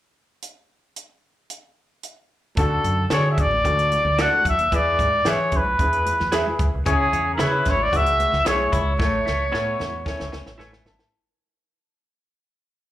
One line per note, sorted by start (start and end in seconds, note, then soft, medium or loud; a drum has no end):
0.42 closed hi-hat medium
0.96 closed hi-hat medium
1.50 closed hi-hat medium
2.03 closed hi-hat soft
2.55 2.78 D2 medium
2.55 3.34 D3 medium
2.55 2.91 D4 medium
2.55 2.91 F#4 medium
2.55 3.07 A4 medium
2.55 2.91 A4 loud
2.55 kick loud
2.55 closed hi-hat medium
2.55 muted conga soft
2.84 3.05 F#2 medium
2.84 closed hi-hat medium
3.10 3.40 D3 loud
3.10 3.44 D4 medium
3.10 3.44 F#4 medium
3.10 3.21 F#4 medium
3.10 3.44 G#4 medium
3.10 3.22 A4 medium
3.10 3.30 C#5 medium
3.10 3.22 D5 medium
3.10 snare loud
3.10 closed hi-hat medium
3.10 muted conga soft
3.32 3.42 E5 medium
3.38 3.65 A1 medium
3.38 4.23 D5 medium
3.38 kick medium
3.38 closed hi-hat medium
3.38 low conga medium
3.51 high conga medium
3.64 3.96 D2 medium
3.64 3.98 D4 medium
3.64 3.97 F#4 medium
3.64 3.98 A4 medium
3.64 kick medium
3.64 closed hi-hat medium
3.64 high conga soft
3.64 low conga medium
3.79 closed hi-hat soft
3.92 closed hi-hat medium
3.92 high conga medium
4.05 4.25 D2 medium
4.05 high conga medium
4.18 4.51 D4 medium
4.18 4.29 F#4 medium
4.18 4.52 F#4 medium
4.18 4.52 A4 medium
4.18 4.29 A4 medium
4.18 4.29 D5 medium
4.18 4.46 F#5 medium
4.18 snare loud
4.18 closed hi-hat medium
4.33 high conga medium
4.45 4.56 B1 medium
4.45 4.77 E5 medium
4.45 kick medium
4.45 closed hi-hat medium
4.45 muted conga soft
4.58 4.68 D#2 medium
4.58 closed hi-hat soft
4.72 4.93 E2 medium
4.72 5.48 E3 medium
4.72 5.05 E4 medium
4.72 5.05 G#4 medium
4.72 5.05 B4 loud
4.72 5.31 D5 loud
4.72 kick medium
4.72 closed hi-hat medium
4.99 5.20 G#2 medium
4.99 kick medium
4.99 closed hi-hat medium
4.99 muted conga soft
5.25 5.47 E3 loud
5.25 5.59 E4 medium
5.25 5.59 G#4 medium
5.25 5.36 G#4 medium
5.25 5.59 B4 medium
5.25 5.36 B4 medium
5.25 5.37 E5 medium
5.25 snare loud
5.25 closed hi-hat medium
5.25 muted conga soft
5.30 5.58 C#5 medium
5.52 5.73 B1 medium
5.52 kick medium
5.52 closed hi-hat medium
5.52 muted conga soft
5.52 low conga medium
5.57 6.61 B4 medium
5.65 high conga medium
5.79 6.10 E2 medium
5.79 6.13 E4 medium
5.79 6.13 G#4 medium
5.79 6.13 B4 medium
5.79 kick medium
5.79 closed hi-hat medium
5.79 muted conga soft
5.79 high conga soft
5.79 low conga medium
5.93 closed hi-hat soft
6.06 closed hi-hat medium
6.06 high conga medium
6.20 6.41 E2 medium
6.20 snare soft
6.20 high conga medium
6.32 6.65 E4 medium
6.32 6.42 G#4 medium
6.32 6.66 G#4 medium
6.32 6.43 B4 medium
6.32 6.66 B4 medium
6.32 6.43 E5 medium
6.32 snare loud
6.32 closed hi-hat medium
6.32 muted conga soft
6.46 high conga medium
6.59 6.70 C#2 medium
6.59 kick loud
6.59 closed hi-hat medium
6.75 6.84 C2 medium
6.85 7.07 C#2 loud
6.85 7.62 C#3 medium
6.85 7.06 C#4 medium
6.85 7.19 E4 medium
6.85 7.19 G#4 medium
6.85 7.19 C#5 loud
6.85 kick loud
6.85 closed hi-hat medium
6.85 muted conga soft
6.90 7.32 G#4 loud
7.13 7.34 E2 medium
7.13 7.33 C#4 medium
7.13 closed hi-hat medium
7.34 7.49 E4 medium
7.34 7.43 A#4 medium
7.39 7.61 C#3 loud
7.39 7.72 E4 medium
7.39 7.90 E4 medium
7.39 7.72 G#4 medium
7.39 7.50 G#4 medium
7.39 7.71 B4 medium
7.39 7.73 C#5 medium
7.39 7.50 C#5 medium
7.39 snare loud
7.39 closed hi-hat medium
7.39 muted conga soft
7.65 7.87 G#1 loud
7.65 kick medium
7.65 snare soft
7.65 closed hi-hat medium
7.65 muted conga soft
7.65 low conga medium
7.70 7.85 C#5 medium
7.77 high conga medium
7.83 7.98 D5 loud
7.92 8.24 C#2 medium
7.92 8.26 E4 medium
7.92 8.43 F#4 medium
7.92 8.26 G#4 medium
7.92 8.27 B4 medium
7.92 kick medium
7.92 closed hi-hat medium
7.92 muted conga soft
7.92 high conga medium
7.92 low conga medium
7.96 8.48 E5 loud
8.06 closed hi-hat medium
8.19 closed hi-hat medium
8.19 high conga medium
8.32 8.44 C#2 medium
8.32 snare soft
8.32 high conga medium
8.45 8.67 B1 medium
8.45 8.56 E4 medium
8.45 8.79 E4 medium
8.45 8.79 G#4 medium
8.45 8.57 G#4 medium
8.45 8.80 C#5 medium
8.45 8.73 C#5 medium
8.45 8.57 C#5 medium
8.45 snare loud
8.45 closed hi-hat medium
8.59 high conga medium
8.72 9.00 C#2 loud
8.72 8.93 E4 medium
8.72 10.56 C#5 medium
8.72 kick medium
8.72 closed hi-hat medium
8.72 muted conga soft
8.97 9.21 A1 loud
8.97 9.76 A2 medium
8.97 9.19 A3 medium
8.97 9.32 E4 medium
8.97 9.33 A4 medium
8.97 9.33 C#5 medium
8.97 kick loud
8.97 snare medium
8.97 muted conga soft
9.25 9.48 C#2 medium
9.25 9.46 A3 medium
9.25 snare medium
9.25 muted conga soft
9.51 9.75 A2 loud
9.51 10.03 B3 medium
9.51 9.86 E4 medium
9.51 9.63 E4 medium
9.51 9.86 A4 medium
9.51 9.63 A4 medium
9.51 9.86 C#5 loud
9.51 9.64 C#5 medium
9.51 snare medium
9.80 10.01 E2 medium
9.80 snare medium
9.80 low conga medium
9.90 high conga medium
10.06 10.26 C#4 medium
10.06 10.39 E4 medium
10.06 10.39 A4 medium
10.06 10.40 C#5 medium
10.06 kick medium
10.06 snare medium
10.06 high conga soft
10.06 low conga medium
10.20 10.31 C#2 medium
10.20 snare medium
10.32 10.44 C#2 medium
10.32 10.53 C#4 medium
10.32 snare medium
10.32 muted conga soft
10.32 high conga medium
10.46 10.57 A1 medium
10.46 snare medium
10.46 high conga medium
10.58 10.80 A1 medium
10.58 11.10 A3 medium
10.58 10.69 E4 medium
10.58 10.92 E4 medium
10.58 10.92 A4 medium
10.58 10.70 A4 medium
10.58 10.93 B4 medium
10.58 10.70 C#5 medium
10.58 10.84 G#5 medium
10.58 snare medium
10.73 snare medium
10.73 high conga medium
10.85 10.96 G#1 loud
10.85 11.11 A5 medium
10.85 snare loud
10.85 muted conga soft
10.85 low conga medium
10.99 snare medium